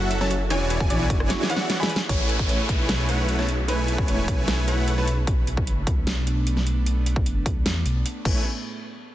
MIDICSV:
0, 0, Header, 1, 9, 480
1, 0, Start_track
1, 0, Key_signature, 3, "major"
1, 0, Tempo, 397351
1, 611, Time_signature, 4, 2, 24, 8
1, 11052, End_track
2, 0, Start_track
2, 0, Title_t, "Synth pluck"
2, 0, Program_c, 0, 84
2, 0, Note_on_c, 0, 78, 98
2, 223, Note_off_c, 0, 78, 0
2, 252, Note_on_c, 0, 81, 90
2, 365, Note_off_c, 0, 81, 0
2, 610, Note_on_c, 0, 80, 115
2, 944, Note_off_c, 0, 80, 0
2, 972, Note_on_c, 0, 80, 106
2, 1302, Note_off_c, 0, 80, 0
2, 1330, Note_on_c, 0, 80, 88
2, 1782, Note_off_c, 0, 80, 0
2, 1809, Note_on_c, 0, 78, 98
2, 2143, Note_off_c, 0, 78, 0
2, 2170, Note_on_c, 0, 83, 86
2, 2285, Note_off_c, 0, 83, 0
2, 11052, End_track
3, 0, Start_track
3, 0, Title_t, "Grand piano"
3, 0, Program_c, 1, 0
3, 253, Note_on_c, 1, 61, 76
3, 253, Note_on_c, 1, 73, 92
3, 483, Note_off_c, 1, 61, 0
3, 483, Note_off_c, 1, 73, 0
3, 610, Note_on_c, 1, 61, 76
3, 610, Note_on_c, 1, 73, 99
3, 919, Note_off_c, 1, 61, 0
3, 919, Note_off_c, 1, 73, 0
3, 1090, Note_on_c, 1, 74, 95
3, 1091, Note_on_c, 1, 62, 74
3, 1399, Note_off_c, 1, 62, 0
3, 1399, Note_off_c, 1, 74, 0
3, 2172, Note_on_c, 1, 68, 89
3, 2174, Note_on_c, 1, 56, 75
3, 2403, Note_off_c, 1, 68, 0
3, 2404, Note_off_c, 1, 56, 0
3, 2529, Note_on_c, 1, 73, 97
3, 2838, Note_off_c, 1, 73, 0
3, 3010, Note_on_c, 1, 73, 87
3, 3319, Note_off_c, 1, 73, 0
3, 4094, Note_on_c, 1, 73, 86
3, 4324, Note_off_c, 1, 73, 0
3, 4451, Note_on_c, 1, 71, 98
3, 4759, Note_off_c, 1, 71, 0
3, 4930, Note_on_c, 1, 73, 87
3, 5239, Note_off_c, 1, 73, 0
3, 6013, Note_on_c, 1, 71, 89
3, 6243, Note_off_c, 1, 71, 0
3, 11052, End_track
4, 0, Start_track
4, 0, Title_t, "Synth arpeggio sound"
4, 0, Program_c, 2, 84
4, 128, Note_on_c, 2, 76, 101
4, 197, Note_off_c, 2, 76, 0
4, 368, Note_on_c, 2, 66, 76
4, 410, Note_off_c, 2, 66, 0
4, 608, Note_on_c, 2, 73, 107
4, 677, Note_off_c, 2, 73, 0
4, 848, Note_on_c, 2, 71, 101
4, 917, Note_off_c, 2, 71, 0
4, 1088, Note_on_c, 2, 74, 103
4, 1157, Note_off_c, 2, 74, 0
4, 1327, Note_on_c, 2, 66, 78
4, 1370, Note_off_c, 2, 66, 0
4, 1568, Note_on_c, 2, 73, 105
4, 1637, Note_off_c, 2, 73, 0
4, 1807, Note_on_c, 2, 71, 101
4, 1910, Note_off_c, 2, 71, 0
4, 2048, Note_on_c, 2, 73, 85
4, 2090, Note_off_c, 2, 73, 0
4, 2288, Note_on_c, 2, 71, 99
4, 2357, Note_off_c, 2, 71, 0
4, 11052, End_track
5, 0, Start_track
5, 0, Title_t, "Supersaw synth"
5, 0, Program_c, 3, 81
5, 0, Note_on_c, 3, 54, 87
5, 0, Note_on_c, 3, 66, 76
5, 0, Note_on_c, 3, 69, 79
5, 0, Note_on_c, 3, 76, 79
5, 0, Note_on_c, 3, 78, 95
5, 222, Note_off_c, 3, 54, 0
5, 222, Note_off_c, 3, 66, 0
5, 222, Note_off_c, 3, 78, 0
5, 223, Note_off_c, 3, 69, 0
5, 223, Note_off_c, 3, 76, 0
5, 253, Note_on_c, 3, 54, 79
5, 253, Note_on_c, 3, 66, 76
5, 253, Note_on_c, 3, 69, 73
5, 253, Note_on_c, 3, 81, 89
5, 254, Note_on_c, 3, 76, 76
5, 366, Note_off_c, 3, 54, 0
5, 366, Note_off_c, 3, 66, 0
5, 366, Note_off_c, 3, 69, 0
5, 366, Note_off_c, 3, 76, 0
5, 366, Note_off_c, 3, 81, 0
5, 608, Note_on_c, 3, 74, 97
5, 609, Note_on_c, 3, 52, 102
5, 609, Note_on_c, 3, 64, 98
5, 609, Note_on_c, 3, 66, 96
5, 609, Note_on_c, 3, 80, 110
5, 610, Note_on_c, 3, 73, 94
5, 943, Note_off_c, 3, 52, 0
5, 943, Note_off_c, 3, 64, 0
5, 943, Note_off_c, 3, 66, 0
5, 943, Note_off_c, 3, 73, 0
5, 943, Note_off_c, 3, 74, 0
5, 943, Note_off_c, 3, 80, 0
5, 972, Note_on_c, 3, 64, 83
5, 972, Note_on_c, 3, 66, 84
5, 972, Note_on_c, 3, 73, 88
5, 972, Note_on_c, 3, 74, 87
5, 972, Note_on_c, 3, 80, 106
5, 973, Note_on_c, 3, 52, 96
5, 1302, Note_off_c, 3, 52, 0
5, 1302, Note_off_c, 3, 64, 0
5, 1302, Note_off_c, 3, 66, 0
5, 1302, Note_off_c, 3, 73, 0
5, 1302, Note_off_c, 3, 74, 0
5, 1302, Note_off_c, 3, 80, 0
5, 1328, Note_on_c, 3, 66, 77
5, 1328, Note_on_c, 3, 80, 90
5, 1329, Note_on_c, 3, 52, 83
5, 1329, Note_on_c, 3, 64, 72
5, 1329, Note_on_c, 3, 74, 77
5, 1330, Note_on_c, 3, 73, 76
5, 1781, Note_off_c, 3, 66, 0
5, 1781, Note_off_c, 3, 80, 0
5, 1782, Note_off_c, 3, 52, 0
5, 1782, Note_off_c, 3, 64, 0
5, 1782, Note_off_c, 3, 73, 0
5, 1782, Note_off_c, 3, 74, 0
5, 1807, Note_on_c, 3, 52, 84
5, 1807, Note_on_c, 3, 64, 76
5, 1807, Note_on_c, 3, 73, 80
5, 1807, Note_on_c, 3, 74, 77
5, 1807, Note_on_c, 3, 78, 95
5, 1808, Note_on_c, 3, 66, 78
5, 2142, Note_off_c, 3, 52, 0
5, 2142, Note_off_c, 3, 64, 0
5, 2142, Note_off_c, 3, 66, 0
5, 2142, Note_off_c, 3, 73, 0
5, 2142, Note_off_c, 3, 74, 0
5, 2142, Note_off_c, 3, 78, 0
5, 2170, Note_on_c, 3, 52, 83
5, 2170, Note_on_c, 3, 64, 74
5, 2170, Note_on_c, 3, 66, 75
5, 2171, Note_on_c, 3, 73, 73
5, 2171, Note_on_c, 3, 74, 74
5, 2171, Note_on_c, 3, 83, 87
5, 2284, Note_off_c, 3, 52, 0
5, 2284, Note_off_c, 3, 64, 0
5, 2285, Note_off_c, 3, 66, 0
5, 2285, Note_off_c, 3, 73, 0
5, 2285, Note_off_c, 3, 74, 0
5, 2285, Note_off_c, 3, 83, 0
5, 2528, Note_on_c, 3, 64, 91
5, 2528, Note_on_c, 3, 71, 91
5, 2529, Note_on_c, 3, 57, 96
5, 2529, Note_on_c, 3, 73, 92
5, 2529, Note_on_c, 3, 80, 108
5, 2862, Note_off_c, 3, 64, 0
5, 2862, Note_off_c, 3, 71, 0
5, 2863, Note_off_c, 3, 57, 0
5, 2863, Note_off_c, 3, 73, 0
5, 2863, Note_off_c, 3, 80, 0
5, 2892, Note_on_c, 3, 57, 94
5, 2892, Note_on_c, 3, 73, 88
5, 2893, Note_on_c, 3, 64, 81
5, 2893, Note_on_c, 3, 71, 84
5, 2893, Note_on_c, 3, 80, 101
5, 3222, Note_off_c, 3, 57, 0
5, 3222, Note_off_c, 3, 64, 0
5, 3222, Note_off_c, 3, 73, 0
5, 3222, Note_off_c, 3, 80, 0
5, 3223, Note_off_c, 3, 71, 0
5, 3251, Note_on_c, 3, 64, 72
5, 3251, Note_on_c, 3, 71, 74
5, 3251, Note_on_c, 3, 73, 71
5, 3252, Note_on_c, 3, 57, 80
5, 3252, Note_on_c, 3, 80, 89
5, 3703, Note_off_c, 3, 57, 0
5, 3703, Note_off_c, 3, 64, 0
5, 3703, Note_off_c, 3, 71, 0
5, 3703, Note_off_c, 3, 73, 0
5, 3703, Note_off_c, 3, 80, 0
5, 3728, Note_on_c, 3, 71, 78
5, 3729, Note_on_c, 3, 57, 79
5, 3729, Note_on_c, 3, 64, 75
5, 3729, Note_on_c, 3, 73, 78
5, 3730, Note_on_c, 3, 78, 90
5, 4063, Note_off_c, 3, 57, 0
5, 4063, Note_off_c, 3, 64, 0
5, 4063, Note_off_c, 3, 71, 0
5, 4063, Note_off_c, 3, 73, 0
5, 4063, Note_off_c, 3, 78, 0
5, 4091, Note_on_c, 3, 64, 73
5, 4091, Note_on_c, 3, 73, 73
5, 4091, Note_on_c, 3, 81, 88
5, 4092, Note_on_c, 3, 57, 80
5, 4092, Note_on_c, 3, 71, 72
5, 4205, Note_off_c, 3, 64, 0
5, 4205, Note_off_c, 3, 71, 0
5, 4205, Note_off_c, 3, 73, 0
5, 4205, Note_off_c, 3, 81, 0
5, 4206, Note_off_c, 3, 57, 0
5, 4447, Note_on_c, 3, 57, 100
5, 4447, Note_on_c, 3, 71, 89
5, 4447, Note_on_c, 3, 73, 91
5, 4448, Note_on_c, 3, 64, 89
5, 4448, Note_on_c, 3, 80, 110
5, 4782, Note_off_c, 3, 57, 0
5, 4782, Note_off_c, 3, 64, 0
5, 4782, Note_off_c, 3, 71, 0
5, 4782, Note_off_c, 3, 73, 0
5, 4782, Note_off_c, 3, 80, 0
5, 4811, Note_on_c, 3, 57, 93
5, 4811, Note_on_c, 3, 64, 84
5, 4811, Note_on_c, 3, 71, 86
5, 4811, Note_on_c, 3, 73, 88
5, 4811, Note_on_c, 3, 80, 102
5, 5141, Note_off_c, 3, 57, 0
5, 5141, Note_off_c, 3, 64, 0
5, 5141, Note_off_c, 3, 73, 0
5, 5141, Note_off_c, 3, 80, 0
5, 5142, Note_off_c, 3, 71, 0
5, 5171, Note_on_c, 3, 64, 74
5, 5171, Note_on_c, 3, 71, 73
5, 5171, Note_on_c, 3, 73, 74
5, 5171, Note_on_c, 3, 80, 92
5, 5172, Note_on_c, 3, 57, 79
5, 5623, Note_off_c, 3, 57, 0
5, 5623, Note_off_c, 3, 64, 0
5, 5623, Note_off_c, 3, 71, 0
5, 5623, Note_off_c, 3, 73, 0
5, 5623, Note_off_c, 3, 80, 0
5, 5649, Note_on_c, 3, 57, 84
5, 5650, Note_on_c, 3, 64, 76
5, 5650, Note_on_c, 3, 71, 76
5, 5650, Note_on_c, 3, 73, 79
5, 5650, Note_on_c, 3, 78, 90
5, 5983, Note_off_c, 3, 57, 0
5, 5983, Note_off_c, 3, 64, 0
5, 5983, Note_off_c, 3, 71, 0
5, 5983, Note_off_c, 3, 73, 0
5, 5984, Note_off_c, 3, 78, 0
5, 6013, Note_on_c, 3, 57, 82
5, 6014, Note_on_c, 3, 64, 74
5, 6014, Note_on_c, 3, 71, 73
5, 6014, Note_on_c, 3, 73, 70
5, 6014, Note_on_c, 3, 81, 86
5, 6126, Note_off_c, 3, 57, 0
5, 6126, Note_off_c, 3, 64, 0
5, 6126, Note_off_c, 3, 71, 0
5, 6126, Note_off_c, 3, 73, 0
5, 6126, Note_off_c, 3, 81, 0
5, 9970, Note_on_c, 3, 73, 79
5, 9971, Note_on_c, 3, 57, 85
5, 9971, Note_on_c, 3, 64, 83
5, 9971, Note_on_c, 3, 71, 80
5, 9971, Note_on_c, 3, 80, 98
5, 10150, Note_off_c, 3, 57, 0
5, 10150, Note_off_c, 3, 64, 0
5, 10150, Note_off_c, 3, 73, 0
5, 10150, Note_off_c, 3, 80, 0
5, 10151, Note_off_c, 3, 71, 0
5, 11052, End_track
6, 0, Start_track
6, 0, Title_t, "Analog synth pad"
6, 0, Program_c, 4, 89
6, 0, Note_on_c, 4, 54, 83
6, 0, Note_on_c, 4, 61, 77
6, 0, Note_on_c, 4, 64, 80
6, 0, Note_on_c, 4, 69, 88
6, 0, Note_on_c, 4, 80, 79
6, 563, Note_off_c, 4, 61, 0
6, 563, Note_off_c, 4, 80, 0
6, 591, Note_off_c, 4, 64, 0
6, 591, Note_off_c, 4, 69, 0
6, 592, Note_off_c, 4, 54, 0
6, 606, Note_on_c, 4, 59, 80
6, 607, Note_on_c, 4, 62, 77
6, 607, Note_on_c, 4, 64, 76
6, 608, Note_on_c, 4, 52, 83
6, 608, Note_on_c, 4, 68, 92
6, 609, Note_on_c, 4, 66, 77
6, 2509, Note_off_c, 4, 59, 0
6, 2509, Note_off_c, 4, 64, 0
6, 2510, Note_off_c, 4, 52, 0
6, 2510, Note_off_c, 4, 62, 0
6, 2510, Note_off_c, 4, 66, 0
6, 2510, Note_off_c, 4, 68, 0
6, 2525, Note_on_c, 4, 57, 72
6, 2526, Note_on_c, 4, 68, 82
6, 2527, Note_on_c, 4, 61, 90
6, 6329, Note_off_c, 4, 57, 0
6, 6330, Note_off_c, 4, 61, 0
6, 6330, Note_off_c, 4, 68, 0
6, 6368, Note_on_c, 4, 62, 92
6, 6369, Note_on_c, 4, 59, 74
6, 6370, Note_on_c, 4, 57, 83
6, 9934, Note_off_c, 4, 57, 0
6, 9934, Note_off_c, 4, 59, 0
6, 9934, Note_off_c, 4, 62, 0
6, 9971, Note_on_c, 4, 68, 83
6, 9972, Note_on_c, 4, 61, 68
6, 9973, Note_on_c, 4, 45, 75
6, 9973, Note_on_c, 4, 57, 66
6, 9973, Note_on_c, 4, 59, 67
6, 10194, Note_off_c, 4, 68, 0
6, 10195, Note_off_c, 4, 45, 0
6, 10195, Note_off_c, 4, 57, 0
6, 10195, Note_off_c, 4, 59, 0
6, 10195, Note_off_c, 4, 61, 0
6, 11052, End_track
7, 0, Start_track
7, 0, Title_t, "Detuned saw bass"
7, 0, Program_c, 5, 39
7, 0, Note_on_c, 5, 30, 88
7, 608, Note_on_c, 5, 28, 95
7, 626, Note_off_c, 5, 30, 0
7, 1088, Note_on_c, 5, 35, 96
7, 1106, Note_off_c, 5, 28, 0
7, 1311, Note_off_c, 5, 35, 0
7, 1328, Note_on_c, 5, 30, 85
7, 1570, Note_off_c, 5, 30, 0
7, 2529, Note_on_c, 5, 33, 100
7, 3117, Note_off_c, 5, 33, 0
7, 3250, Note_on_c, 5, 35, 82
7, 4929, Note_on_c, 5, 28, 93
7, 4947, Note_off_c, 5, 35, 0
7, 5151, Note_off_c, 5, 28, 0
7, 5170, Note_on_c, 5, 35, 82
7, 6355, Note_off_c, 5, 35, 0
7, 6370, Note_on_c, 5, 35, 83
7, 6849, Note_on_c, 5, 30, 94
7, 6867, Note_off_c, 5, 35, 0
7, 7071, Note_off_c, 5, 30, 0
7, 7090, Note_on_c, 5, 37, 82
7, 7312, Note_off_c, 5, 37, 0
7, 7328, Note_on_c, 5, 35, 91
7, 8769, Note_on_c, 5, 30, 93
7, 8787, Note_off_c, 5, 35, 0
7, 8991, Note_off_c, 5, 30, 0
7, 9009, Note_on_c, 5, 37, 81
7, 9242, Note_off_c, 5, 37, 0
7, 9250, Note_on_c, 5, 40, 88
7, 9471, Note_off_c, 5, 40, 0
7, 9490, Note_on_c, 5, 35, 103
7, 9712, Note_off_c, 5, 35, 0
7, 9968, Note_on_c, 5, 33, 95
7, 10193, Note_off_c, 5, 33, 0
7, 11052, End_track
8, 0, Start_track
8, 0, Title_t, "Downlifter"
8, 0, Program_c, 6, 103
8, 2530, Note_on_c, 6, 60, 67
8, 6370, Note_off_c, 6, 60, 0
8, 11052, End_track
9, 0, Start_track
9, 0, Title_t, "Drums"
9, 129, Note_on_c, 9, 42, 80
9, 250, Note_off_c, 9, 42, 0
9, 253, Note_on_c, 9, 38, 37
9, 370, Note_on_c, 9, 42, 65
9, 374, Note_off_c, 9, 38, 0
9, 491, Note_off_c, 9, 42, 0
9, 609, Note_on_c, 9, 42, 82
9, 609, Note_on_c, 9, 51, 49
9, 730, Note_off_c, 9, 42, 0
9, 730, Note_off_c, 9, 51, 0
9, 849, Note_on_c, 9, 42, 67
9, 970, Note_off_c, 9, 42, 0
9, 972, Note_on_c, 9, 36, 97
9, 1090, Note_on_c, 9, 42, 81
9, 1093, Note_off_c, 9, 36, 0
9, 1211, Note_off_c, 9, 42, 0
9, 1329, Note_on_c, 9, 36, 101
9, 1330, Note_on_c, 9, 42, 69
9, 1450, Note_off_c, 9, 36, 0
9, 1451, Note_off_c, 9, 42, 0
9, 1452, Note_on_c, 9, 37, 68
9, 1570, Note_on_c, 9, 38, 70
9, 1570, Note_on_c, 9, 42, 84
9, 1573, Note_off_c, 9, 37, 0
9, 1691, Note_off_c, 9, 38, 0
9, 1691, Note_off_c, 9, 42, 0
9, 1729, Note_on_c, 9, 38, 73
9, 1810, Note_on_c, 9, 42, 65
9, 1850, Note_off_c, 9, 38, 0
9, 1891, Note_on_c, 9, 38, 82
9, 1930, Note_off_c, 9, 42, 0
9, 2012, Note_off_c, 9, 38, 0
9, 2050, Note_on_c, 9, 38, 86
9, 2050, Note_on_c, 9, 42, 79
9, 2171, Note_off_c, 9, 38, 0
9, 2171, Note_off_c, 9, 42, 0
9, 2210, Note_on_c, 9, 38, 99
9, 2291, Note_on_c, 9, 42, 69
9, 2331, Note_off_c, 9, 38, 0
9, 2370, Note_on_c, 9, 38, 103
9, 2412, Note_off_c, 9, 42, 0
9, 2491, Note_off_c, 9, 38, 0
9, 2529, Note_on_c, 9, 36, 114
9, 2530, Note_on_c, 9, 42, 79
9, 2650, Note_off_c, 9, 36, 0
9, 2651, Note_off_c, 9, 42, 0
9, 2771, Note_on_c, 9, 42, 65
9, 2891, Note_off_c, 9, 42, 0
9, 2892, Note_on_c, 9, 36, 94
9, 3011, Note_on_c, 9, 42, 80
9, 3013, Note_off_c, 9, 36, 0
9, 3131, Note_off_c, 9, 42, 0
9, 3250, Note_on_c, 9, 36, 99
9, 3251, Note_on_c, 9, 42, 69
9, 3370, Note_off_c, 9, 36, 0
9, 3372, Note_off_c, 9, 42, 0
9, 3491, Note_on_c, 9, 38, 119
9, 3491, Note_on_c, 9, 42, 82
9, 3612, Note_off_c, 9, 38, 0
9, 3612, Note_off_c, 9, 42, 0
9, 3731, Note_on_c, 9, 42, 66
9, 3852, Note_off_c, 9, 42, 0
9, 3971, Note_on_c, 9, 42, 75
9, 4092, Note_off_c, 9, 42, 0
9, 4094, Note_on_c, 9, 38, 37
9, 4211, Note_on_c, 9, 42, 65
9, 4214, Note_off_c, 9, 38, 0
9, 4332, Note_off_c, 9, 42, 0
9, 4451, Note_on_c, 9, 42, 81
9, 4571, Note_off_c, 9, 42, 0
9, 4691, Note_on_c, 9, 42, 66
9, 4812, Note_off_c, 9, 42, 0
9, 4813, Note_on_c, 9, 36, 98
9, 4931, Note_on_c, 9, 42, 82
9, 4933, Note_off_c, 9, 36, 0
9, 5052, Note_off_c, 9, 42, 0
9, 5170, Note_on_c, 9, 36, 104
9, 5171, Note_on_c, 9, 42, 67
9, 5291, Note_off_c, 9, 36, 0
9, 5292, Note_off_c, 9, 42, 0
9, 5411, Note_on_c, 9, 38, 124
9, 5411, Note_on_c, 9, 42, 87
9, 5531, Note_off_c, 9, 38, 0
9, 5531, Note_off_c, 9, 42, 0
9, 5651, Note_on_c, 9, 42, 67
9, 5772, Note_off_c, 9, 42, 0
9, 5891, Note_on_c, 9, 42, 76
9, 6012, Note_off_c, 9, 42, 0
9, 6131, Note_on_c, 9, 42, 68
9, 6252, Note_off_c, 9, 42, 0
9, 6370, Note_on_c, 9, 36, 126
9, 6371, Note_on_c, 9, 42, 79
9, 6491, Note_off_c, 9, 36, 0
9, 6492, Note_off_c, 9, 42, 0
9, 6612, Note_on_c, 9, 42, 66
9, 6733, Note_off_c, 9, 42, 0
9, 6733, Note_on_c, 9, 36, 104
9, 6852, Note_on_c, 9, 42, 77
9, 6853, Note_off_c, 9, 36, 0
9, 6972, Note_off_c, 9, 42, 0
9, 7090, Note_on_c, 9, 36, 107
9, 7092, Note_on_c, 9, 42, 70
9, 7211, Note_off_c, 9, 36, 0
9, 7212, Note_off_c, 9, 42, 0
9, 7332, Note_on_c, 9, 38, 124
9, 7332, Note_on_c, 9, 42, 83
9, 7453, Note_off_c, 9, 38, 0
9, 7453, Note_off_c, 9, 42, 0
9, 7574, Note_on_c, 9, 42, 65
9, 7694, Note_off_c, 9, 42, 0
9, 7813, Note_on_c, 9, 42, 78
9, 7934, Note_off_c, 9, 42, 0
9, 7935, Note_on_c, 9, 38, 38
9, 8053, Note_on_c, 9, 42, 66
9, 8056, Note_off_c, 9, 38, 0
9, 8174, Note_off_c, 9, 42, 0
9, 8293, Note_on_c, 9, 42, 79
9, 8413, Note_off_c, 9, 42, 0
9, 8532, Note_on_c, 9, 42, 65
9, 8652, Note_on_c, 9, 36, 105
9, 8653, Note_off_c, 9, 42, 0
9, 8772, Note_on_c, 9, 42, 78
9, 8773, Note_off_c, 9, 36, 0
9, 8892, Note_off_c, 9, 42, 0
9, 9010, Note_on_c, 9, 36, 107
9, 9011, Note_on_c, 9, 42, 66
9, 9130, Note_off_c, 9, 36, 0
9, 9132, Note_off_c, 9, 42, 0
9, 9251, Note_on_c, 9, 38, 125
9, 9251, Note_on_c, 9, 42, 80
9, 9372, Note_off_c, 9, 38, 0
9, 9372, Note_off_c, 9, 42, 0
9, 9491, Note_on_c, 9, 42, 66
9, 9612, Note_off_c, 9, 42, 0
9, 9732, Note_on_c, 9, 42, 77
9, 9853, Note_off_c, 9, 42, 0
9, 9970, Note_on_c, 9, 36, 119
9, 9972, Note_on_c, 9, 49, 86
9, 10090, Note_off_c, 9, 36, 0
9, 10093, Note_off_c, 9, 49, 0
9, 11052, End_track
0, 0, End_of_file